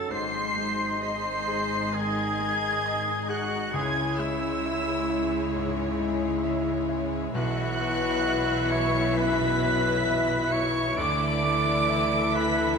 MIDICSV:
0, 0, Header, 1, 11, 480
1, 0, Start_track
1, 0, Key_signature, 4, "minor"
1, 0, Tempo, 903614
1, 64, Time_signature, 4, 2, 24, 8
1, 3905, Tempo, 910470
1, 6768, End_track
2, 0, Start_track
2, 0, Title_t, "Violin section"
2, 0, Program_c, 0, 48
2, 66, Note_on_c, 0, 96, 122
2, 539, Note_off_c, 0, 96, 0
2, 545, Note_on_c, 0, 96, 117
2, 1022, Note_off_c, 0, 96, 0
2, 1029, Note_on_c, 0, 92, 127
2, 1746, Note_on_c, 0, 90, 113
2, 1751, Note_off_c, 0, 92, 0
2, 1976, Note_on_c, 0, 92, 127
2, 1987, Note_off_c, 0, 90, 0
2, 2217, Note_off_c, 0, 92, 0
2, 2221, Note_on_c, 0, 88, 122
2, 3181, Note_off_c, 0, 88, 0
2, 3905, Note_on_c, 0, 90, 127
2, 4607, Note_off_c, 0, 90, 0
2, 4613, Note_on_c, 0, 97, 116
2, 4854, Note_on_c, 0, 95, 127
2, 4860, Note_off_c, 0, 97, 0
2, 5568, Note_on_c, 0, 97, 127
2, 5571, Note_off_c, 0, 95, 0
2, 5812, Note_off_c, 0, 97, 0
2, 5815, Note_on_c, 0, 98, 127
2, 6526, Note_off_c, 0, 98, 0
2, 6544, Note_on_c, 0, 95, 127
2, 6768, Note_off_c, 0, 95, 0
2, 6768, End_track
3, 0, Start_track
3, 0, Title_t, "Flute"
3, 0, Program_c, 1, 73
3, 64, Note_on_c, 1, 84, 106
3, 536, Note_off_c, 1, 84, 0
3, 548, Note_on_c, 1, 84, 104
3, 1028, Note_on_c, 1, 80, 94
3, 1036, Note_off_c, 1, 84, 0
3, 1750, Note_on_c, 1, 78, 102
3, 1758, Note_off_c, 1, 80, 0
3, 1995, Note_on_c, 1, 80, 104
3, 2003, Note_off_c, 1, 78, 0
3, 2229, Note_on_c, 1, 76, 100
3, 2237, Note_off_c, 1, 80, 0
3, 3185, Note_off_c, 1, 76, 0
3, 3896, Note_on_c, 1, 78, 121
3, 4622, Note_on_c, 1, 85, 111
3, 4630, Note_off_c, 1, 78, 0
3, 4860, Note_off_c, 1, 85, 0
3, 4863, Note_on_c, 1, 83, 102
3, 5576, Note_on_c, 1, 85, 123
3, 5584, Note_off_c, 1, 83, 0
3, 5816, Note_off_c, 1, 85, 0
3, 5820, Note_on_c, 1, 86, 127
3, 6545, Note_on_c, 1, 83, 120
3, 6553, Note_off_c, 1, 86, 0
3, 6768, Note_off_c, 1, 83, 0
3, 6768, End_track
4, 0, Start_track
4, 0, Title_t, "Violin section"
4, 0, Program_c, 2, 48
4, 60, Note_on_c, 2, 75, 75
4, 63, Note_on_c, 2, 68, 68
4, 1968, Note_off_c, 2, 68, 0
4, 1983, Note_on_c, 2, 68, 80
4, 1987, Note_on_c, 2, 73, 89
4, 1988, Note_off_c, 2, 75, 0
4, 3877, Note_off_c, 2, 68, 0
4, 3880, Note_off_c, 2, 73, 0
4, 3899, Note_on_c, 2, 76, 98
4, 3900, Note_on_c, 2, 71, 88
4, 5794, Note_off_c, 2, 76, 0
4, 5815, Note_off_c, 2, 71, 0
4, 5823, Note_on_c, 2, 69, 94
4, 5826, Note_on_c, 2, 76, 93
4, 6768, Note_off_c, 2, 69, 0
4, 6768, Note_off_c, 2, 76, 0
4, 6768, End_track
5, 0, Start_track
5, 0, Title_t, "Clarinet"
5, 0, Program_c, 3, 71
5, 0, Note_on_c, 3, 69, 100
5, 58, Note_on_c, 3, 72, 94
5, 66, Note_off_c, 3, 69, 0
5, 541, Note_off_c, 3, 72, 0
5, 544, Note_on_c, 3, 72, 98
5, 1028, Note_on_c, 3, 68, 104
5, 1036, Note_off_c, 3, 72, 0
5, 1752, Note_on_c, 3, 66, 89
5, 1760, Note_off_c, 3, 68, 0
5, 1978, Note_off_c, 3, 66, 0
5, 1981, Note_on_c, 3, 68, 103
5, 2222, Note_on_c, 3, 64, 91
5, 2230, Note_off_c, 3, 68, 0
5, 3182, Note_off_c, 3, 64, 0
5, 3896, Note_on_c, 3, 66, 114
5, 4622, Note_on_c, 3, 73, 110
5, 4630, Note_off_c, 3, 66, 0
5, 4867, Note_on_c, 3, 71, 114
5, 4875, Note_off_c, 3, 73, 0
5, 5573, Note_on_c, 3, 73, 110
5, 5581, Note_off_c, 3, 71, 0
5, 5813, Note_on_c, 3, 74, 115
5, 5821, Note_off_c, 3, 73, 0
5, 6533, Note_off_c, 3, 74, 0
5, 6536, Note_on_c, 3, 71, 102
5, 6768, Note_off_c, 3, 71, 0
5, 6768, End_track
6, 0, Start_track
6, 0, Title_t, "Oboe"
6, 0, Program_c, 4, 68
6, 0, Note_on_c, 4, 69, 89
6, 60, Note_on_c, 4, 72, 107
6, 68, Note_off_c, 4, 69, 0
6, 536, Note_off_c, 4, 72, 0
6, 539, Note_on_c, 4, 72, 100
6, 1031, Note_on_c, 4, 68, 100
6, 1038, Note_off_c, 4, 72, 0
6, 1745, Note_on_c, 4, 66, 97
6, 1753, Note_off_c, 4, 68, 0
6, 1987, Note_off_c, 4, 66, 0
6, 1991, Note_on_c, 4, 68, 106
6, 2230, Note_on_c, 4, 64, 87
6, 2238, Note_off_c, 4, 68, 0
6, 3186, Note_off_c, 4, 64, 0
6, 3907, Note_on_c, 4, 66, 115
6, 4626, Note_on_c, 4, 73, 115
6, 4634, Note_off_c, 4, 66, 0
6, 4868, Note_on_c, 4, 71, 97
6, 4876, Note_off_c, 4, 73, 0
6, 5577, Note_on_c, 4, 73, 111
6, 5585, Note_off_c, 4, 71, 0
6, 5819, Note_on_c, 4, 74, 127
6, 5827, Note_off_c, 4, 73, 0
6, 6535, Note_off_c, 4, 74, 0
6, 6538, Note_on_c, 4, 71, 95
6, 6768, Note_off_c, 4, 71, 0
6, 6768, End_track
7, 0, Start_track
7, 0, Title_t, "Grand piano"
7, 0, Program_c, 5, 0
7, 0, Control_c, 5, 64, 127
7, 0, Note_on_c, 5, 49, 54
7, 0, Note_on_c, 5, 61, 61
7, 0, Note_on_c, 5, 69, 64
7, 56, Note_on_c, 5, 44, 72
7, 61, Note_off_c, 5, 61, 0
7, 75, Note_off_c, 5, 69, 0
7, 75, Control_c, 5, 64, 0
7, 77, Note_off_c, 5, 49, 0
7, 156, Control_c, 5, 64, 127
7, 295, Note_on_c, 5, 56, 59
7, 539, Note_on_c, 5, 75, 67
7, 688, Note_off_c, 5, 56, 0
7, 784, Note_on_c, 5, 68, 65
7, 932, Note_off_c, 5, 75, 0
7, 1007, Note_off_c, 5, 44, 0
7, 1029, Note_on_c, 5, 51, 61
7, 1174, Note_off_c, 5, 68, 0
7, 1272, Note_on_c, 5, 56, 62
7, 1416, Note_off_c, 5, 51, 0
7, 1518, Note_on_c, 5, 75, 71
7, 1656, Note_off_c, 5, 56, 0
7, 1750, Note_on_c, 5, 68, 66
7, 1897, Note_off_c, 5, 75, 0
7, 1985, Note_on_c, 5, 37, 79
7, 1989, Note_off_c, 5, 68, 0
7, 1998, Control_c, 5, 64, 0
7, 2081, Control_c, 5, 64, 127
7, 2222, Note_on_c, 5, 56, 56
7, 2472, Note_on_c, 5, 76, 72
7, 2612, Note_off_c, 5, 56, 0
7, 2707, Note_on_c, 5, 64, 74
7, 2855, Note_off_c, 5, 76, 0
7, 2925, Note_off_c, 5, 37, 0
7, 2949, Note_on_c, 5, 44, 73
7, 3089, Note_off_c, 5, 64, 0
7, 3181, Note_on_c, 5, 56, 65
7, 3327, Note_off_c, 5, 44, 0
7, 3419, Note_on_c, 5, 76, 75
7, 3563, Note_off_c, 5, 56, 0
7, 3659, Note_on_c, 5, 64, 73
7, 3804, Note_off_c, 5, 76, 0
7, 3901, Note_off_c, 5, 64, 0
7, 3902, Note_on_c, 5, 35, 92
7, 3912, Control_c, 5, 64, 0
7, 4002, Control_c, 5, 64, 127
7, 4143, Note_on_c, 5, 59, 66
7, 4387, Note_on_c, 5, 76, 75
7, 4530, Note_off_c, 5, 59, 0
7, 4627, Note_on_c, 5, 64, 73
7, 4771, Note_off_c, 5, 76, 0
7, 4845, Note_off_c, 5, 35, 0
7, 4866, Note_on_c, 5, 42, 71
7, 5010, Note_off_c, 5, 64, 0
7, 5107, Note_on_c, 5, 59, 67
7, 5245, Note_off_c, 5, 42, 0
7, 5341, Note_on_c, 5, 76, 76
7, 5483, Note_off_c, 5, 59, 0
7, 5576, Note_on_c, 5, 64, 70
7, 5721, Note_off_c, 5, 76, 0
7, 5816, Note_off_c, 5, 64, 0
7, 5816, Note_on_c, 5, 38, 91
7, 5826, Control_c, 5, 64, 0
7, 5898, Control_c, 5, 64, 127
7, 6057, Note_on_c, 5, 57, 67
7, 6299, Note_on_c, 5, 76, 80
7, 6444, Note_off_c, 5, 57, 0
7, 6537, Note_on_c, 5, 64, 72
7, 6686, Note_off_c, 5, 76, 0
7, 6761, Note_off_c, 5, 38, 0
7, 6768, Note_off_c, 5, 64, 0
7, 6768, End_track
8, 0, Start_track
8, 0, Title_t, "Viola section"
8, 0, Program_c, 6, 48
8, 65, Note_on_c, 6, 63, 68
8, 68, Note_on_c, 6, 56, 68
8, 1970, Note_off_c, 6, 56, 0
8, 1990, Note_off_c, 6, 63, 0
8, 1992, Note_on_c, 6, 64, 81
8, 1993, Note_on_c, 6, 56, 87
8, 3882, Note_off_c, 6, 56, 0
8, 3882, Note_off_c, 6, 64, 0
8, 3900, Note_on_c, 6, 64, 96
8, 3901, Note_on_c, 6, 52, 92
8, 5794, Note_off_c, 6, 64, 0
8, 5813, Note_off_c, 6, 52, 0
8, 5818, Note_on_c, 6, 64, 93
8, 5819, Note_on_c, 6, 52, 99
8, 6768, Note_off_c, 6, 52, 0
8, 6768, Note_off_c, 6, 64, 0
8, 6768, End_track
9, 0, Start_track
9, 0, Title_t, "French horn section"
9, 0, Program_c, 7, 60
9, 0, Note_on_c, 7, 54, 74
9, 55, Note_on_c, 7, 63, 86
9, 526, Note_off_c, 7, 54, 0
9, 543, Note_on_c, 7, 56, 77
9, 1964, Note_off_c, 7, 63, 0
9, 1975, Note_off_c, 7, 56, 0
9, 1981, Note_on_c, 7, 56, 89
9, 1983, Note_on_c, 7, 64, 92
9, 3807, Note_off_c, 7, 56, 0
9, 3807, Note_off_c, 7, 64, 0
9, 3897, Note_on_c, 7, 64, 95
9, 3900, Note_on_c, 7, 54, 94
9, 5793, Note_off_c, 7, 64, 0
9, 5794, Note_off_c, 7, 54, 0
9, 5816, Note_on_c, 7, 64, 104
9, 5819, Note_on_c, 7, 57, 90
9, 6768, Note_off_c, 7, 57, 0
9, 6768, Note_off_c, 7, 64, 0
9, 6768, End_track
10, 0, Start_track
10, 0, Title_t, "Cello section"
10, 0, Program_c, 8, 48
10, 65, Note_on_c, 8, 44, 83
10, 1969, Note_off_c, 8, 44, 0
10, 1987, Note_on_c, 8, 49, 95
10, 3880, Note_off_c, 8, 49, 0
10, 3901, Note_on_c, 8, 47, 109
10, 5795, Note_off_c, 8, 47, 0
10, 5820, Note_on_c, 8, 50, 96
10, 6768, Note_off_c, 8, 50, 0
10, 6768, End_track
11, 0, Start_track
11, 0, Title_t, "Double bass section"
11, 0, Program_c, 10, 48
11, 56, Note_on_c, 10, 32, 81
11, 1965, Note_off_c, 10, 32, 0
11, 1986, Note_on_c, 10, 37, 92
11, 3879, Note_off_c, 10, 37, 0
11, 3901, Note_on_c, 10, 35, 98
11, 5795, Note_off_c, 10, 35, 0
11, 5817, Note_on_c, 10, 38, 104
11, 6768, Note_off_c, 10, 38, 0
11, 6768, End_track
0, 0, End_of_file